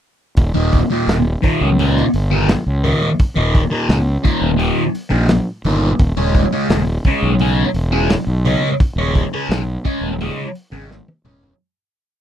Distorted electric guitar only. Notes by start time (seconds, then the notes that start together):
0.54 D#2 A#2 D#3
0.90 D#2 A#2 D#3
1.42 D#2 A#2 D#3
1.79 D#2 A#2 D#3
2.31 D#2 A#2 D#3
2.49 muted distorted electric guitar stroke
2.84 D#2 A#2 D#3
3.36 D#2 A#2 D#3
3.71 D#2 A#2 D#3
4.24 D#2 A#2 D#3
4.57 D#2 A#2 D#3
5.10 D#2 A#2 D#3
5.28 muted distorted electric guitar stroke
5.65 D#2 A#2 D#3
6.17 C#3 G#3 C#4
6.53 C#3 G#3 C#4
7.06 C#3 G#3 C#4
7.41 C#3 G#3 C#4
7.92 C#3 G#3 C#4
8.11 muted distorted electric guitar stroke
8.46 C#3 G#3 C#4
8.98 C#3 G#3 C#4
9.33 C#3 G#3 C#4
9.85 C#3 G#3 C#4
10.21 C#3 G#3 C#4
10.72 C#3 G#3 C#4
10.90 muted distorted electric guitar stroke
11.25 C#3 G#3 C#4